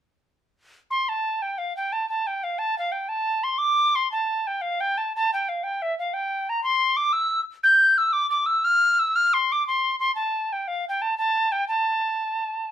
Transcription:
0.91 C6
1.09 A5
1.42 G5
1.58 F5
1.77 G5
1.93 A5
2.09 A5
2.27 G5
2.44 F5
2.59 A5
2.79 F5
2.92 G5
3.09 A5
3.44 C6
3.58 D6
3.95 C6
4.12 A5
4.47 G5
4.62 F5
4.81 G5
4.98 A5
5.16 A5
5.34 G5
5.49 F5
5.63 G5
5.82 E5
5.99 F5
6.14 G5
6.49 A#5
6.64 C6
6.97 D6
7.13 E6
7.64 G6
7.98 E6
8.13 D6
8.30 D6
8.46 E6
8.65 F6
8.99 E6
9.16 F6
9.34 C6
9.52 D6
9.68 C6
10.00 C6
10.15 A5
10.53 G5
10.68 F5
10.89 G5
11.02 A5
11.18 A5
11.52 G5
11.68 A5

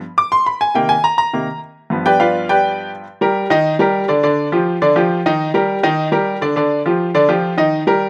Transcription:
0.18 D6
0.32 C6
0.46 B5
0.61 G#5
0.75 C3 D#3 A#3 G5
0.89 G#5
1.04 A#5
1.18 A#5
1.33 C3 D#3 A#3
1.90 G2 F3 B3
2.06 G4 B4 D5 G5
2.20 F4 B4 D5 F5
2.49 G4 B4 D5 G5
3.21 G3 G4 A#4
3.50 D#3 D#4 D#5
3.79 G3 G4 A#4
4.08 D3 D4 D5
4.23 D3 D4 D5
4.52 F3 F4 G4
4.82 D3 D4 D5
4.96 F3 F4 G4
5.26 D#3 D#4 D#5
5.54 G3 G4 A#4
5.83 D#3 D#4 D#5
6.12 G3 G4 A#4
6.41 D3 D4 D5
6.56 D3 D4 D5
6.86 F3 F4 G4
7.14 D3 D4 D5
7.29 F3 F4 G4
7.57 D#3 D#4 D#5
7.87 G3 G4 A#4

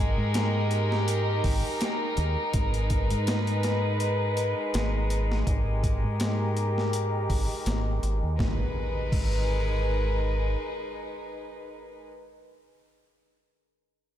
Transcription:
Already playing: G#1 G#3 D#4 G4 A#4
0.18 G#2
0.34 snare, closed hi-hat
0.71 closed hi-hat
0.92 snare
1.08 closed hi-hat
1.44 G#1, kick, open hi-hat
1.81 snare, closed hi-hat
2.17 D#2, closed hi-hat
2.53 G#1 G#3 B4, kick, closed hi-hat
2.74 closed hi-hat
2.90 kick, closed hi-hat
3.10 G#2, closed hi-hat
3.27 snare, closed hi-hat
3.47 closed hi-hat
3.63 snare, closed hi-hat
4.00 closed hi-hat
4.37 closed hi-hat
4.74 G#1, snare, closed hi-hat
5.10 closed hi-hat
5.32 snare
5.47 G#1 G4 A#4, kick, closed hi-hat
5.83 kick, closed hi-hat
6.04 G#2
6.20 snare, closed hi-hat
6.57 closed hi-hat
6.78 snare
6.93 closed hi-hat
7.30 G#1, kick, open hi-hat
7.66 G#1, snare, closed hi-hat
8.03 G#1, closed hi-hat
8.23 D#2
8.39 G#1 G#3 D#4 A#4 B4, kick, snare, impact
9.12 G#1, kick, crash

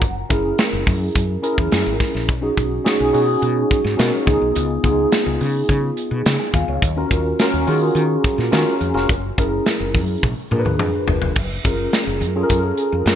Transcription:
Already playing: F#5
0.01 F#1, kick, closed hi-hat
0.29 F#1 C#4 E4 G#4 A#4, kick, closed hi-hat
0.58 snare, closed hi-hat
0.73 F#1
0.87 F#2, kick, open hi-hat
1.15 F#2, kick, closed hi-hat
1.43 C#4 E4 G#4 A#4, closed hi-hat
1.58 E2, kick
1.72 F#2, snare, closed hi-hat
1.86 G#1
2.00 kick, snare, open hi-hat
2.14 A#1, snare
2.28 B1, kick, closed hi-hat
2.41 C#4 D#4 F#4 G#4
2.57 B1, kick, closed hi-hat
2.84 C#4 D#4 F#4 G#4, snare, closed hi-hat
3.00 B1
3.13 B2 C#4 D#4 F#4 G#4, open hi-hat
3.42 B2, closed hi-hat
3.71 kick, closed hi-hat
3.84 G#2, snare
3.97 B2 C#4 D#4 F#4 A#4, snare, closed hi-hat
4.25 C#2 B3 D#4 F4 G#4, kick, closed hi-hat
4.42 B1
4.55 C#2, closed hi-hat
4.83 C#2 B3 D#4 F4 G#4, kick, closed hi-hat
5.12 snare, closed hi-hat
5.26 C#2
5.41 C#3, open hi-hat
5.69 C#3, kick, closed hi-hat
5.97 closed hi-hat
6.11 B2
6.26 C#3, snare, closed hi-hat
6.40 G#5
6.54 D#2 F5, kick, closed hi-hat
6.68 C#2 C#5
6.82 D#2, kick, closed hi-hat
6.97 C#4 F4 F#4 A#4
7.11 D#2, kick, closed hi-hat
7.39 C#4 F4 F#4 A#4, snare, closed hi-hat
7.53 D#2
7.67 D#3 C#4 F4 F#4 G#4, open hi-hat
7.95 D#3, closed hi-hat
8.24 kick, closed hi-hat
8.38 A#2, snare
8.51 D#3 C#4 F4 F#4 A#4, snare, closed hi-hat
8.81 F2, closed hi-hat
8.94 F1 C#4 F4 F#4 A#4, snare
9.09 F#1, kick, closed hi-hat
9.38 F#1 C#4 E4 G#4 A#4, kick, closed hi-hat
9.66 snare, closed hi-hat
9.80 F#1
9.95 F#2, kick, open hi-hat
10.23 A#1, kick, high tom
10.51 A#2 D4 F4 G#4 A#4, mid tom
10.59 B4
10.65 D#2, mid tom
10.79 F2, mid tom
11.07 F#1, floor tom
11.22 F1, floor tom
11.36 F#1, kick, crash
11.64 F#1 C#4 F4 G#4 A#4, kick, closed hi-hat
11.93 snare, closed hi-hat
12.07 F#1
12.21 F#2, closed hi-hat
12.36 C#4 F4 G#4 A4
12.43 A#4
12.49 F#2, kick, closed hi-hat
12.78 closed hi-hat
12.92 F2
13.06 F#2 C#4 F4 G#4 A#4, snare, closed hi-hat

